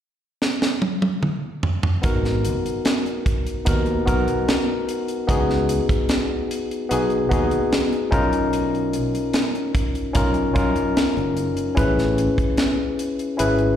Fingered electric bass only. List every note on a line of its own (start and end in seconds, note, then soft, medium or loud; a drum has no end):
2.04 2.54 G#1 medium
3.67 4.00 D#2 medium
4.08 4.24 B1 medium
5.29 5.79 C#2 medium
6.91 7.24 B1 medium
7.32 7.48 D#2 medium
8.12 8.96 B1 medium
10.15 10.49 B1 medium
10.56 10.73 F#2 medium
10.97 muted fingered electric bass stroke soft
11.17 11.50 F#1 medium
11.77 12.28 A1 medium
13.40 13.73 G#1 medium